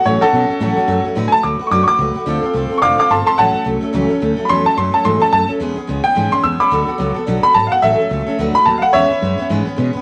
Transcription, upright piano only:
X:1
M:4/4
L:1/8
Q:"Swing" 1/4=216
K:A
V:1 name="Upright piano"
c [FA]6 z | z [ga] d'2 [c'd'] [c'd']3- | [c'd']3 z [=fc'd'] [fd'] [a=c'] [ac'] | [fa]2 z6 |
[b=c'] a c' a c' a a z | z3 =g2 =c' e' [bd']- | [bd']3 z2 b a [=f^f] | e4 z b a [=f^f] |
[ce]4 z4 |]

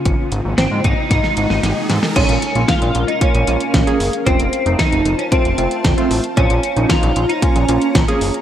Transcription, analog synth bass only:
X:1
M:4/4
L:1/16
Q:1/4=114
K:Bbm
V:1 name="Analog synth bass" clef=bass
A,,, z A,,, A,,, A,,, A,, A,,, z A,,, z A,,, A,,, A,,, z A,, z | B,,, B,,, z B,,, z B,,, B,,, z2 B,,, B,,, z B,,, z G,,, z | F,,, F,,, z F,,, z F,,, F,,, z2 F,,, F,,, z F,,, z =A,,, z | B,,, B,,, z B,,, z B,,, B,,, z2 B,,, B,,, z B,,, z G,,, z |]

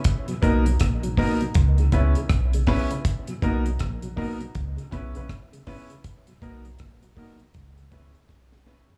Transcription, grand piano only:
X:1
M:4/4
L:1/16
Q:"Swing 16ths" 1/4=80
K:B
V:1 name="Grand piano"
z2 [B,DA] z3 [B,DA] z3 [CEB] z3 [CEB] [EB] | z2 [B,DA] z3 [B,DA] z3 [CEB] [CEB] z2 [CEB] z | z2 [B,DA] z3 [B,DA] z3 [CEB] z3 [CEB] [EB] |]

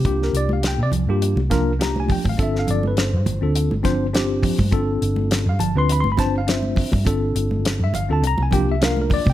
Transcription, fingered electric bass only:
X:1
M:4/4
L:1/16
Q:"Swing 16ths" 1/4=103
K:Gphr
V:1 name="Fingered electric bass" clef=bass
C,,2 C,,3 C, C,, G,,2 C,,6 A,,, | G,,,2 G,,,3 G,, G,,, D,,2 G,,,6 G,, | G,,,2 G,,,3 G,, G,,, D,,2 G,,,6 G,, | G,,,2 G,,,3 G,, G,,, D,, C,, C,,6 C, |]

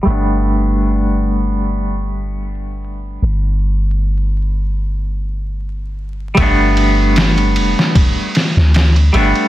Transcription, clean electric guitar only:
X:1
M:4/4
L:1/8
Q:"Swing 16ths" 1/4=76
K:G
V:1 name="Clean electric guitar"
[G,A,B,D]8- | [G,A,B,D]8 | [G,A,B,D]6- [G,A,B,D] [G,A,B,D] |]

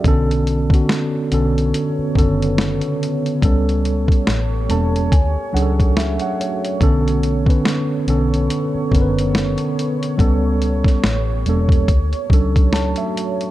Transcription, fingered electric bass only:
X:1
M:4/4
L:1/16
Q:"Swing 16ths" 1/4=71
K:Bm
V:1 name="Fingered electric bass" clef=bass
B,,,3 z3 B,,,2 z2 F,,,3 z3 | C,,3 z A,,,2 E,,,2 D,, z C,,3 z3 | B,,,3 z3 B,,,2 z2 F,,,3 z3 | C,,3 z A,,,2 E,,,2 D,, z C,,3 z3 |]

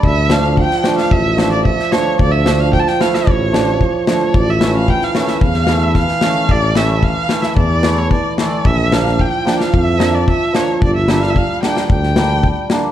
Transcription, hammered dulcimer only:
X:1
M:4/4
L:1/16
Q:1/4=111
K:none
V:1 name="Hammered dulcimer"
z2 [F,A,D] z3 [F,A,D] z3 [F,A,D] z3 [F,A,D] z | z2 [F,A,D] z3 [F,A,E] z3 [F,A,D] z3 [F,A,D] z | z2 [E,A,^C] z3 [E,A,C] z3 [E,A,E] z3 [E,A,C] z | z2 [E,A,^C] z3 [E,A,E] z3 [E,A,E] z3 [E,A,E] z |
z2 [F,_B,D] z3 [F,B,D] z3 [F,B,D] z3 [F,B,D] z | z2 [G,_B,D] z3 [G,B,D] z3 [G,B,D] z3 [G,B,D] z |]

